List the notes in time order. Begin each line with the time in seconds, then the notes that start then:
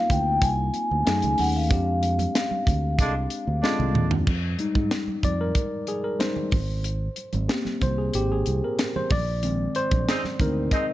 Already playing: A#3 C4 D#4 F4
0.10 D2 G5, kick, closed hi-hat, muted conga, low conga
0.42 C2 G#5, kick, closed hi-hat, muted conga
0.74 closed hi-hat, muted conga
0.91 D2
1.05 F#2 A3 C#4 D#4 G#4 G#5, snare, closed hi-hat, muted conga
1.22 C#2, closed hi-hat, high conga, low conga
1.38 D#2 F#5, open hi-hat, muted conga, high conga, low conga
1.56 F5
1.69 F2 G#3 C4 D4 G4, kick, closed hi-hat
2.03 closed hi-hat, muted conga
2.19 closed hi-hat, high conga
2.35 snare, closed hi-hat
2.51 high conga
2.67 D2, kick, closed hi-hat, muted conga, low conga
2.99 C2 D3 G#3 D4, kick, closed hi-hat, muted conga
3.30 closed hi-hat
3.47 D2
3.62 D3 G#3 C4 D4 F4, snare
3.79 C2, high conga, low conga
3.95 D#2, mid tom, muted conga, high conga, low conga
4.11 floor tom
4.27 F2, kick, crash, muted conga
4.59 G3 G#3 D#4, closed hi-hat, muted conga
4.75 G#2, kick, high conga
4.91 snare, closed hi-hat, muted conga
5.08 muted fingered electric bass stroke, high conga
5.23 F2 D5, kick, closed hi-hat, muted conga, low conga
5.41 A#4
5.55 kick, closed hi-hat
5.87 G#4, closed hi-hat
6.04 A#4
6.19 G3 G#3 D#4 C5, snare, closed hi-hat, muted conga
6.36 high conga, low conga
6.51 G#1, kick, open hi-hat, muted conga, high conga, low conga
6.84 closed hi-hat
7.16 closed hi-hat, muted conga
7.33 G#1, closed hi-hat, high conga
7.49 A#3 C4 G4, snare, closed hi-hat, muted conga
7.65 muted fingered electric bass stroke, snare, high conga
7.81 C2 C5, kick, closed hi-hat, low conga
7.98 G#4
8.14 G#1 G4, closed hi-hat
8.32 G#4
8.46 C2, closed hi-hat, muted conga
8.64 A#4
8.79 snare, closed hi-hat, muted conga
8.96 C5, high conga, low conga
9.10 A#1 D5, kick, open hi-hat, muted conga, high conga, low conga
9.43 D#3 G#3 C4, closed hi-hat, muted conga
9.75 C5, closed hi-hat
9.91 A#1, kick, closed hi-hat, high conga
10.07 G#3 C4 D#4, snare, closed hi-hat
10.24 muted fingered electric bass stroke, snare, high conga
10.40 D2 G#3 C4 D#4 A#4, kick, closed hi-hat, muted conga, low conga
10.71 G#3 C4 D#4 D#5, kick, closed hi-hat, muted conga